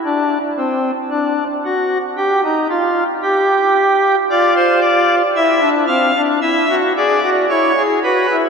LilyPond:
\new Staff \with { instrumentName = "Pipe organ" } { \time 4/4 \key d \phrygian \tempo 4 = 57 << { d'8 c'8 d'8 fis'8 g'16 ees'16 f'8 g'4 | d''16 c''16 d''8 e''8 f''8 e''8 d''8 cis''8 b'8 | } \\ { r1 | f'4 e'16 d'16 c'16 d'16 e'16 fis'16 gis'16 fis'16 e'16 gis'16 fis'16 e'16 | } >> }